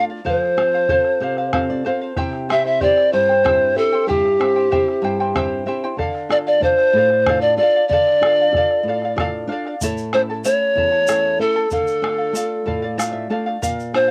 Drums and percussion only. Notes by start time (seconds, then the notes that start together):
0.27 bombo low
0.42 bombo rim
0.58 bombo rim
0.74 bombo rim
0.89 bombo rim, bombo low
1.04 bombo rim
1.22 bombo rim
1.37 bombo rim
1.53 bombo rim, bombo low
2.16 bombo rim, bombo low
2.33 bombo rim
2.50 bombo rim
2.81 bombo low
2.97 bombo rim
3.31 bombo rim
3.46 bombo rim, bombo low
4.10 bombo rim, bombo low
4.26 bombo rim
4.41 bombo rim
4.72 bombo low
4.88 bombo rim
5.20 bombo rim
5.36 bombo rim, bombo low
5.99 bombo rim, bombo low
6.15 bombo rim
6.31 bombo rim
6.62 bombo low
6.78 bombo rim
7.10 bombo rim
7.26 bombo rim, bombo low
7.91 bombo low
8.08 bombo rim
8.23 bombo rim
8.54 bombo rim, bombo low
8.71 bombo rim
9.02 bombo rim
9.18 bombo rim, bombo low
9.66 bombo rim
9.81 bombo low, shaker
9.98 shaker
10.13 bombo rim
10.45 bombo rim, shaker
10.78 bombo low
11.07 bombo rim, shaker
11.26 bombo rim
11.57 bombo rim
11.71 bombo low, shaker
11.87 shaker
12.04 bombo rim
12.35 bombo rim, shaker
12.68 bombo low
13.00 bombo rim, shaker
13.16 bombo rim
13.47 bombo rim
13.62 bombo low, shaker
13.80 shaker
13.94 bombo rim